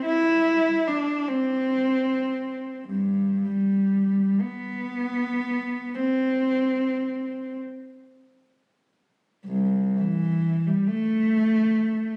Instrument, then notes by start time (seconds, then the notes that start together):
cello
0.06 E4
0.87 D4
1.28 C4
2.89 G2
3.45 G3
4.40 B3
5.95 C4
9.46 C2
9.97 E3
10.66 G3
10.87 A3